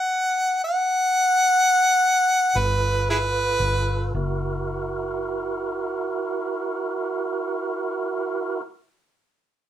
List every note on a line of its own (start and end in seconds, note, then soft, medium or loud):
0.00 0.61 F#5 medium
0.64 2.59 F#5 loud
2.54 3.56 G1 medium
2.54 4.13 F4 medium
2.54 4.13 A4 medium
2.54 4.13 B4 medium
2.54 3.07 B4 medium
3.10 3.17 E4 medium
3.10 3.18 G#4 medium
3.10 4.14 B4 loud
3.60 4.11 G1 medium
4.14 8.60 F#1 medium
4.14 8.61 E4 medium
4.14 8.61 F#4 medium
4.14 8.62 A#4 medium